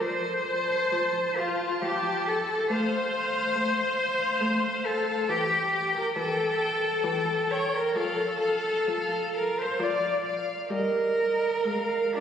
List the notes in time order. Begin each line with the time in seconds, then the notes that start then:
0.01 F3 C5
0.49 A5
0.92 F3
1.36 F4 A5
1.82 F3 G4
2.26 A4 A5
2.70 A3 C5 F5
3.13 F5
3.55 A3
3.98 F5
4.41 A3
4.84 A4 F5
5.29 E3 G4 G5
5.72 G5
5.94 A#4
6.15 E3 A4 G5
6.59 G5
7.04 E3 G5
7.48 C#5 G5
7.73 A#4
7.95 F3 A4 F5
8.41 F5
8.87 F3 F5
9.33 A#4 F5
9.58 C5
9.79 F3 D5 F5
10.25 F5
10.70 G3 A#4 D#5
11.18 D#5
11.65 G#3 F5
12.15 D4 F5